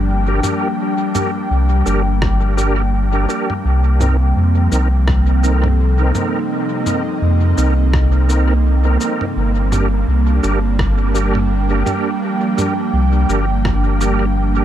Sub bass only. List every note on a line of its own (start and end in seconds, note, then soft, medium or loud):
0.00 0.41 G1 medium
1.51 1.83 C2 medium
1.87 3.26 G1 loud
3.65 4.33 C2 medium
4.36 4.68 F2 medium
4.72 6.12 C2 medium
7.22 7.54 F2 medium
7.58 8.98 C2 loud
9.36 10.05 G1 loud
10.08 10.40 C2 medium
10.44 11.84 G1 loud
12.93 13.25 C2 medium
13.29 14.65 G1 medium